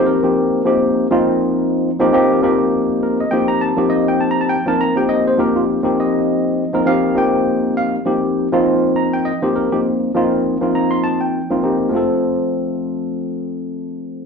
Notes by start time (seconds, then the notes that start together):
Already playing: F3 A#3 C4 D#4 G4
0.06 A#4
0.23 F3 A#3 C4 D#4 G4
0.64 F3 A#3 C4 D#4 G4
1.10 F3 A#3 C4 D#4 F4
1.99 F3 A#3 C4 D#4 G4
2.13 F3 A#3 C4 D#4 G4
2.42 F3 A#3 C4 D#4 G4
3.03 A#4
3.20 D#5
3.31 F3 A#3 C4 D#4 G4 G5
3.48 A#5
3.61 A5
3.76 F3 A#3 C4 D#4 G4 C5
3.90 D#5
4.08 G5
4.20 A5
4.31 A#5
4.41 A5
4.49 G5
4.66 F3 A#3 C4 D#4 A#4 A5
4.81 A#5
4.95 F3 A#3 C4 D#4 G4 G5
5.09 D#5
5.27 C5
5.38 F3 A#3 C4 D#4 G4 A#4
5.56 F4
5.83 F3 A#3 C4 D#4 G4
6.00 D#5
6.73 F3 A#3 C4 D#4 A#4
6.86 F3 A#3 C4 D#4 G4 F5
7.15 F3 A#3 C4 D#4 G4 G5
7.77 F5
8.05 F3 A#3 C4 D#4 G4
8.52 F3 A#3 C4 D#4 F4
8.96 A#5
9.13 G5
9.25 D#5
9.42 F3 A#3 C4 D#4 G4 C5
9.56 A#4
9.72 F3 A#3 C4 D#4 G4
10.14 F3 A#3 C4 D#4 F4
10.61 F3 A#3 C4 D#4 F4
10.75 A#5
10.91 C6
11.04 A5
11.21 G5
11.50 F3 A#3 C4 D#4 F4
11.62 F3 A#3 C4 D#4 G4
11.89 F3 A3 C4
11.95 F4 A4